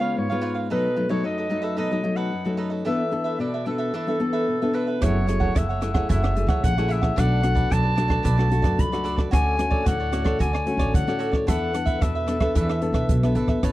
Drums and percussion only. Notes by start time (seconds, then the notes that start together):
5.02 kick, cross-stick, closed hi-hat
5.28 cross-stick, closed hi-hat
5.41 kick
5.56 kick, cross-stick, closed hi-hat
5.82 cross-stick, closed hi-hat
5.95 kick, cross-stick
6.10 kick, closed hi-hat
6.24 cross-stick
6.37 closed hi-hat
6.48 kick, cross-stick, closed hi-hat
6.64 kick, closed hi-hat
6.78 cross-stick, closed hi-hat
6.90 closed hi-hat
7.03 kick, cross-stick
7.18 kick, cross-stick, closed hi-hat
7.43 cross-stick, closed hi-hat
7.56 kick, closed hi-hat
7.71 kick, cross-stick, closed hi-hat
7.98 cross-stick, closed hi-hat
8.10 kick, cross-stick
8.25 kick, closed hi-hat
8.39 cross-stick
8.51 closed hi-hat
8.64 kick, cross-stick, closed hi-hat
8.79 kick, closed hi-hat
8.93 cross-stick, closed hi-hat
9.05 closed hi-hat
9.18 kick, cross-stick
9.33 kick, cross-stick, closed hi-hat
9.59 cross-stick, closed hi-hat
9.71 kick
9.86 kick, cross-stick, closed hi-hat
10.13 cross-stick, closed hi-hat
10.25 kick, cross-stick
10.40 kick, closed hi-hat
10.55 cross-stick
10.67 closed hi-hat
10.79 kick, cross-stick, closed hi-hat
10.94 kick, closed hi-hat
11.08 cross-stick, closed hi-hat
11.20 closed hi-hat
11.33 kick, cross-stick
11.48 kick, cross-stick, closed hi-hat
11.74 cross-stick, closed hi-hat
11.87 kick, closed hi-hat
12.02 kick, cross-stick, closed hi-hat
12.28 cross-stick, closed hi-hat
12.40 kick, cross-stick
12.55 kick, closed hi-hat
12.69 cross-stick
12.82 closed hi-hat
12.94 kick, cross-stick, closed hi-hat
13.09 kick, closed hi-hat
13.23 cross-stick, closed hi-hat
13.35 closed hi-hat
13.48 kick, cross-stick
13.63 kick, cross-stick, closed hi-hat